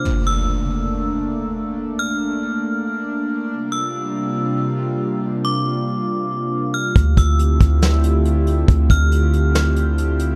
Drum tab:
HH |--------|--------|--------|--------|
SD |--------|--------|--------|--------|
BD |--------|--------|--------|--------|

HH |xxxxxxxx|xxxxxxxx|
SD |----o---|----o---|
BD |oo-o----|oo------|